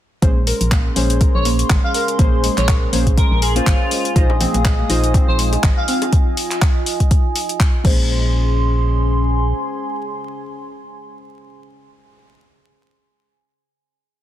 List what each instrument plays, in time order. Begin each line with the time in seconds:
0.22 fm bass A#1, synth pluck G#3, synth stab A#3 C#4 G#4 C5, analog synth pad C#4 G#4 C6, ambient pad C#4, kick, closed hi-hat
0.41 ambient pad C6
0.47 synth pluck A#4, open hi-hat
0.61 fm bass A#1, closed hi-hat
0.72 synth pluck A#3, kick, clap, closed hi-hat
0.95 fm bass A#1, synth pluck G#3, synth stab A#3 C#4 G#4 C5, open hi-hat
1.07 ambient pad G#5, closed hi-hat
1.21 synth pluck A#4, kick, closed hi-hat
1.35 fm bass A#1, digital synth lead C#5
1.45 synth pluck A#3, open hi-hat
1.59 closed hi-hat
1.70 fm bass G#1, synth pluck G#3, kick, clap, closed hi-hat
1.84 digital synth lead F5
1.94 synth pluck A#4, digital synth lead F5, open hi-hat
2.08 closed hi-hat
2.18 fm bass A#1, synth stab A#3 C#4 G#4 C5, synth pluck A#3, kick, closed hi-hat
2.44 synth pluck G#3, open hi-hat
2.58 fm bass A#1, digital synth lead C#5, clap, closed hi-hat
2.68 synth pluck A#4, kick, clap, closed hi-hat
2.92 fm bass A#1, synth stab A#3 C#4 G#4 C5, synth pluck A#3, open hi-hat
3.07 kick, closed hi-hat
3.17 synth pluck G#3, digital synth lead A#4, kick, closed hi-hat
3.31 fm bass A#1, digital synth lead A#4
3.42 digital synth lead G#4, synth pluck A#4, open hi-hat
3.55 synth stab A#3 C#4 G#4 C5, digital synth lead F4, closed hi-hat
3.67 fm bass G#1, synth pluck A#3, kick, clap, closed hi-hat
3.91 synth pluck G#3, open hi-hat
4.05 closed hi-hat
4.15 fm bass A#1, synth stab G#3 D#4 F4 C5, ambient pad F4, analog synth pad G#4 F5 D#6, synth pluck D#5, kick, closed hi-hat
4.30 high bongo
4.41 synth pluck C4, ambient pad D#5, open hi-hat, high conga, low conga
4.54 fm bass A#1, closed hi-hat, high conga
4.65 synth pluck G#3, kick, clap, closed hi-hat, high bongo
4.79 high conga
4.89 fm bass A#1, synth stab G#3 D#4 F4 C5, synth pluck D#5, open hi-hat
5.04 closed hi-hat
5.14 synth pluck C4, kick, closed hi-hat, high bongo
5.28 fm bass A#1, digital synth lead C5
5.39 synth pluck G#3, open hi-hat
5.53 closed hi-hat, high bongo
5.63 fm bass G#1, synth pluck D#5, kick, clap, closed hi-hat
5.77 digital synth lead F5
5.88 synth pluck C4, digital synth lead F5, open hi-hat
6.02 closed hi-hat, high bongo
6.13 kick, closed hi-hat
6.37 open hi-hat
6.51 clap, closed hi-hat
6.62 kick, clap, closed hi-hat
6.86 open hi-hat
7.00 kick, closed hi-hat
7.11 kick, closed hi-hat
7.36 open hi-hat
7.49 closed hi-hat
7.60 kick, clap, closed hi-hat
7.84 fm bass A#1, synth pluck G#3, synth stab A#3 C#4 G#4 C5, ambient pad C#4, analog synth pad C#4 G#4 C6, kick, crash
7.93 ambient pad C6
8.25 ambient pad G#5